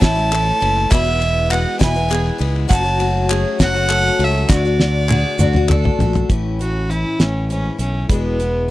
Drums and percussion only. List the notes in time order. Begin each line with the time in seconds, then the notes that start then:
0.02 kick, snare, ride, shaker
0.17 clap, shaker
0.33 clap, ride
0.47 clap
0.62 ride
0.77 clap
0.91 kick, clap, ride, shaker
1.07 clap
1.22 clap, ride
1.51 clap, ride
1.81 kick, snare, ride, shaker
1.96 clap, shaker
2.12 clap, ride
2.27 clap
2.41 ride
2.56 clap
2.71 kick, clap, ride, shaker
2.87 clap
3.00 clap, ride
3.30 clap, ride
3.60 kick, snare, ride, shaker
3.75 clap, shaker
3.90 clap, ride
4.05 clap
4.20 ride
4.36 clap
4.49 kick, snare, clap, shaker
4.65 shaker
4.80 snare, shaker
5.09 clap, high tom
5.39 mid tom, shaker
5.54 clap, mid tom
5.69 clap, mid tom
5.85 clap, floor tom
6.00 floor tom, shaker
6.14 clap, floor tom, shaker
6.30 kick, closed hi-hat
6.61 closed hi-hat
6.91 closed hi-hat
7.20 snare, closed hi-hat
7.50 closed hi-hat
7.79 closed hi-hat
8.10 kick, closed hi-hat
8.40 closed hi-hat